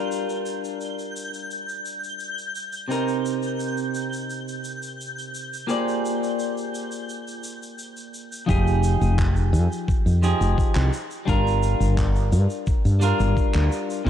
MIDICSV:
0, 0, Header, 1, 5, 480
1, 0, Start_track
1, 0, Tempo, 697674
1, 76, Time_signature, 4, 2, 24, 8
1, 9699, End_track
2, 0, Start_track
2, 0, Title_t, "Synth texture"
2, 0, Program_c, 0, 99
2, 0, Note_on_c, 0, 91, 74
2, 5849, Note_off_c, 0, 91, 0
2, 9699, End_track
3, 0, Start_track
3, 0, Title_t, "Clean electric guitar"
3, 0, Program_c, 1, 27
3, 0, Note_on_c, 1, 55, 65
3, 0, Note_on_c, 1, 62, 61
3, 0, Note_on_c, 1, 65, 57
3, 0, Note_on_c, 1, 70, 74
3, 1959, Note_off_c, 1, 55, 0
3, 1963, Note_off_c, 1, 62, 0
3, 1967, Note_off_c, 1, 65, 0
3, 1971, Note_off_c, 1, 70, 0
3, 1979, Note_on_c, 1, 48, 66
3, 1987, Note_on_c, 1, 60, 64
3, 1998, Note_on_c, 1, 63, 60
3, 2005, Note_on_c, 1, 70, 73
3, 3879, Note_off_c, 1, 48, 0
3, 3883, Note_off_c, 1, 60, 0
3, 3889, Note_off_c, 1, 63, 0
3, 3892, Note_off_c, 1, 70, 0
3, 3901, Note_on_c, 1, 58, 70
3, 3906, Note_on_c, 1, 65, 60
3, 3912, Note_on_c, 1, 67, 60
3, 3917, Note_on_c, 1, 68, 62
3, 3921, Note_on_c, 1, 72, 65
3, 3928, Note_on_c, 1, 74, 74
3, 5800, Note_off_c, 1, 58, 0
3, 5803, Note_off_c, 1, 65, 0
3, 5806, Note_off_c, 1, 67, 0
3, 5808, Note_off_c, 1, 68, 0
3, 5810, Note_off_c, 1, 72, 0
3, 5813, Note_off_c, 1, 74, 0
3, 5822, Note_on_c, 1, 53, 81
3, 5831, Note_on_c, 1, 63, 77
3, 5839, Note_on_c, 1, 67, 78
3, 5849, Note_on_c, 1, 68, 93
3, 7001, Note_off_c, 1, 53, 0
3, 7005, Note_off_c, 1, 63, 0
3, 7009, Note_off_c, 1, 67, 0
3, 7014, Note_off_c, 1, 68, 0
3, 7034, Note_on_c, 1, 53, 83
3, 7039, Note_on_c, 1, 63, 73
3, 7043, Note_on_c, 1, 67, 74
3, 7047, Note_on_c, 1, 68, 94
3, 7501, Note_off_c, 1, 53, 0
3, 7503, Note_off_c, 1, 63, 0
3, 7505, Note_off_c, 1, 67, 0
3, 7507, Note_off_c, 1, 68, 0
3, 7743, Note_on_c, 1, 55, 84
3, 7752, Note_on_c, 1, 62, 77
3, 7761, Note_on_c, 1, 65, 73
3, 7768, Note_on_c, 1, 70, 98
3, 8921, Note_off_c, 1, 55, 0
3, 8925, Note_off_c, 1, 62, 0
3, 8930, Note_off_c, 1, 65, 0
3, 8934, Note_off_c, 1, 70, 0
3, 8942, Note_on_c, 1, 55, 81
3, 8951, Note_on_c, 1, 62, 75
3, 8958, Note_on_c, 1, 65, 76
3, 8968, Note_on_c, 1, 70, 91
3, 9640, Note_off_c, 1, 55, 0
3, 9645, Note_off_c, 1, 62, 0
3, 9649, Note_off_c, 1, 65, 0
3, 9654, Note_off_c, 1, 70, 0
3, 9663, Note_on_c, 1, 48, 82
3, 9671, Note_on_c, 1, 58, 74
3, 9699, Note_off_c, 1, 48, 0
3, 9699, Note_off_c, 1, 58, 0
3, 9699, End_track
4, 0, Start_track
4, 0, Title_t, "Fretless electric bass"
4, 0, Program_c, 2, 35
4, 5840, Note_on_c, 2, 29, 104
4, 6157, Note_off_c, 2, 29, 0
4, 6201, Note_on_c, 2, 29, 84
4, 6555, Note_on_c, 2, 41, 90
4, 6566, Note_off_c, 2, 29, 0
4, 6651, Note_off_c, 2, 41, 0
4, 6920, Note_on_c, 2, 41, 77
4, 7105, Note_off_c, 2, 41, 0
4, 7160, Note_on_c, 2, 29, 80
4, 7251, Note_off_c, 2, 29, 0
4, 7403, Note_on_c, 2, 36, 88
4, 7492, Note_off_c, 2, 36, 0
4, 7759, Note_on_c, 2, 31, 101
4, 8076, Note_off_c, 2, 31, 0
4, 8120, Note_on_c, 2, 31, 79
4, 8478, Note_on_c, 2, 43, 89
4, 8489, Note_off_c, 2, 31, 0
4, 8572, Note_off_c, 2, 43, 0
4, 8841, Note_on_c, 2, 43, 81
4, 9025, Note_off_c, 2, 43, 0
4, 9081, Note_on_c, 2, 31, 83
4, 9171, Note_off_c, 2, 31, 0
4, 9322, Note_on_c, 2, 38, 89
4, 9412, Note_off_c, 2, 38, 0
4, 9676, Note_on_c, 2, 36, 106
4, 9699, Note_off_c, 2, 36, 0
4, 9699, End_track
5, 0, Start_track
5, 0, Title_t, "Drums"
5, 81, Note_on_c, 9, 82, 54
5, 150, Note_off_c, 9, 82, 0
5, 203, Note_on_c, 9, 82, 34
5, 272, Note_off_c, 9, 82, 0
5, 316, Note_on_c, 9, 82, 64
5, 385, Note_off_c, 9, 82, 0
5, 443, Note_on_c, 9, 82, 44
5, 511, Note_off_c, 9, 82, 0
5, 556, Note_on_c, 9, 82, 47
5, 625, Note_off_c, 9, 82, 0
5, 680, Note_on_c, 9, 82, 34
5, 749, Note_off_c, 9, 82, 0
5, 800, Note_on_c, 9, 82, 78
5, 869, Note_off_c, 9, 82, 0
5, 920, Note_on_c, 9, 82, 46
5, 989, Note_off_c, 9, 82, 0
5, 1037, Note_on_c, 9, 82, 51
5, 1106, Note_off_c, 9, 82, 0
5, 1162, Note_on_c, 9, 82, 34
5, 1231, Note_off_c, 9, 82, 0
5, 1277, Note_on_c, 9, 82, 71
5, 1346, Note_off_c, 9, 82, 0
5, 1403, Note_on_c, 9, 82, 41
5, 1471, Note_off_c, 9, 82, 0
5, 1512, Note_on_c, 9, 82, 50
5, 1581, Note_off_c, 9, 82, 0
5, 1640, Note_on_c, 9, 82, 35
5, 1708, Note_off_c, 9, 82, 0
5, 1757, Note_on_c, 9, 82, 71
5, 1826, Note_off_c, 9, 82, 0
5, 1876, Note_on_c, 9, 82, 42
5, 1945, Note_off_c, 9, 82, 0
5, 2002, Note_on_c, 9, 82, 56
5, 2071, Note_off_c, 9, 82, 0
5, 2122, Note_on_c, 9, 82, 31
5, 2191, Note_off_c, 9, 82, 0
5, 2241, Note_on_c, 9, 82, 75
5, 2310, Note_off_c, 9, 82, 0
5, 2357, Note_on_c, 9, 82, 43
5, 2426, Note_off_c, 9, 82, 0
5, 2476, Note_on_c, 9, 82, 54
5, 2544, Note_off_c, 9, 82, 0
5, 2596, Note_on_c, 9, 82, 32
5, 2665, Note_off_c, 9, 82, 0
5, 2715, Note_on_c, 9, 82, 73
5, 2784, Note_off_c, 9, 82, 0
5, 2842, Note_on_c, 9, 82, 47
5, 2911, Note_off_c, 9, 82, 0
5, 2959, Note_on_c, 9, 82, 51
5, 3027, Note_off_c, 9, 82, 0
5, 3086, Note_on_c, 9, 82, 41
5, 3155, Note_off_c, 9, 82, 0
5, 3195, Note_on_c, 9, 82, 70
5, 3264, Note_off_c, 9, 82, 0
5, 3320, Note_on_c, 9, 82, 46
5, 3389, Note_off_c, 9, 82, 0
5, 3446, Note_on_c, 9, 82, 59
5, 3515, Note_off_c, 9, 82, 0
5, 3568, Note_on_c, 9, 82, 36
5, 3637, Note_off_c, 9, 82, 0
5, 3678, Note_on_c, 9, 82, 81
5, 3747, Note_off_c, 9, 82, 0
5, 3808, Note_on_c, 9, 82, 48
5, 3877, Note_off_c, 9, 82, 0
5, 3916, Note_on_c, 9, 82, 54
5, 3985, Note_off_c, 9, 82, 0
5, 4048, Note_on_c, 9, 82, 34
5, 4117, Note_off_c, 9, 82, 0
5, 4166, Note_on_c, 9, 82, 83
5, 4235, Note_off_c, 9, 82, 0
5, 4290, Note_on_c, 9, 82, 48
5, 4359, Note_off_c, 9, 82, 0
5, 4399, Note_on_c, 9, 82, 50
5, 4468, Note_off_c, 9, 82, 0
5, 4524, Note_on_c, 9, 82, 35
5, 4593, Note_off_c, 9, 82, 0
5, 4643, Note_on_c, 9, 82, 79
5, 4711, Note_off_c, 9, 82, 0
5, 4758, Note_on_c, 9, 82, 45
5, 4827, Note_off_c, 9, 82, 0
5, 4879, Note_on_c, 9, 82, 54
5, 4948, Note_off_c, 9, 82, 0
5, 5006, Note_on_c, 9, 82, 36
5, 5075, Note_off_c, 9, 82, 0
5, 5116, Note_on_c, 9, 82, 80
5, 5185, Note_off_c, 9, 82, 0
5, 5248, Note_on_c, 9, 82, 47
5, 5316, Note_off_c, 9, 82, 0
5, 5358, Note_on_c, 9, 82, 56
5, 5427, Note_off_c, 9, 82, 0
5, 5482, Note_on_c, 9, 82, 42
5, 5551, Note_off_c, 9, 82, 0
5, 5601, Note_on_c, 9, 82, 69
5, 5670, Note_off_c, 9, 82, 0
5, 5726, Note_on_c, 9, 82, 53
5, 5795, Note_off_c, 9, 82, 0
5, 5840, Note_on_c, 9, 36, 107
5, 5846, Note_on_c, 9, 82, 57
5, 5909, Note_off_c, 9, 36, 0
5, 5915, Note_off_c, 9, 82, 0
5, 5966, Note_on_c, 9, 82, 44
5, 6035, Note_off_c, 9, 82, 0
5, 6078, Note_on_c, 9, 82, 94
5, 6147, Note_off_c, 9, 82, 0
5, 6203, Note_on_c, 9, 82, 45
5, 6272, Note_off_c, 9, 82, 0
5, 6320, Note_on_c, 9, 36, 101
5, 6321, Note_on_c, 9, 39, 74
5, 6324, Note_on_c, 9, 82, 55
5, 6388, Note_off_c, 9, 36, 0
5, 6390, Note_off_c, 9, 39, 0
5, 6392, Note_off_c, 9, 82, 0
5, 6440, Note_on_c, 9, 82, 46
5, 6509, Note_off_c, 9, 82, 0
5, 6565, Note_on_c, 9, 82, 90
5, 6634, Note_off_c, 9, 82, 0
5, 6689, Note_on_c, 9, 82, 47
5, 6758, Note_off_c, 9, 82, 0
5, 6799, Note_on_c, 9, 36, 110
5, 6808, Note_on_c, 9, 82, 53
5, 6868, Note_off_c, 9, 36, 0
5, 6877, Note_off_c, 9, 82, 0
5, 6928, Note_on_c, 9, 82, 41
5, 6996, Note_off_c, 9, 82, 0
5, 7041, Note_on_c, 9, 82, 82
5, 7110, Note_off_c, 9, 82, 0
5, 7165, Note_on_c, 9, 82, 53
5, 7234, Note_off_c, 9, 82, 0
5, 7279, Note_on_c, 9, 36, 95
5, 7287, Note_on_c, 9, 82, 56
5, 7348, Note_off_c, 9, 36, 0
5, 7356, Note_off_c, 9, 82, 0
5, 7398, Note_on_c, 9, 39, 92
5, 7401, Note_on_c, 9, 82, 42
5, 7467, Note_off_c, 9, 39, 0
5, 7470, Note_off_c, 9, 82, 0
5, 7521, Note_on_c, 9, 82, 76
5, 7590, Note_off_c, 9, 82, 0
5, 7642, Note_on_c, 9, 82, 46
5, 7711, Note_off_c, 9, 82, 0
5, 7759, Note_on_c, 9, 36, 99
5, 7763, Note_on_c, 9, 82, 65
5, 7828, Note_off_c, 9, 36, 0
5, 7832, Note_off_c, 9, 82, 0
5, 7893, Note_on_c, 9, 82, 39
5, 7962, Note_off_c, 9, 82, 0
5, 8001, Note_on_c, 9, 82, 83
5, 8070, Note_off_c, 9, 82, 0
5, 8126, Note_on_c, 9, 82, 52
5, 8195, Note_off_c, 9, 82, 0
5, 8238, Note_on_c, 9, 36, 106
5, 8243, Note_on_c, 9, 82, 57
5, 8244, Note_on_c, 9, 39, 77
5, 8307, Note_off_c, 9, 36, 0
5, 8312, Note_off_c, 9, 82, 0
5, 8313, Note_off_c, 9, 39, 0
5, 8364, Note_on_c, 9, 82, 39
5, 8432, Note_off_c, 9, 82, 0
5, 8481, Note_on_c, 9, 82, 91
5, 8550, Note_off_c, 9, 82, 0
5, 8601, Note_on_c, 9, 82, 51
5, 8669, Note_off_c, 9, 82, 0
5, 8716, Note_on_c, 9, 82, 57
5, 8718, Note_on_c, 9, 36, 112
5, 8784, Note_off_c, 9, 82, 0
5, 8787, Note_off_c, 9, 36, 0
5, 8843, Note_on_c, 9, 82, 42
5, 8912, Note_off_c, 9, 82, 0
5, 8957, Note_on_c, 9, 82, 92
5, 9025, Note_off_c, 9, 82, 0
5, 9081, Note_on_c, 9, 82, 46
5, 9150, Note_off_c, 9, 82, 0
5, 9197, Note_on_c, 9, 36, 104
5, 9199, Note_on_c, 9, 82, 52
5, 9266, Note_off_c, 9, 36, 0
5, 9268, Note_off_c, 9, 82, 0
5, 9319, Note_on_c, 9, 39, 81
5, 9323, Note_on_c, 9, 82, 45
5, 9388, Note_off_c, 9, 39, 0
5, 9391, Note_off_c, 9, 82, 0
5, 9440, Note_on_c, 9, 82, 84
5, 9509, Note_off_c, 9, 82, 0
5, 9565, Note_on_c, 9, 82, 48
5, 9633, Note_off_c, 9, 82, 0
5, 9677, Note_on_c, 9, 36, 105
5, 9699, Note_off_c, 9, 36, 0
5, 9699, End_track
0, 0, End_of_file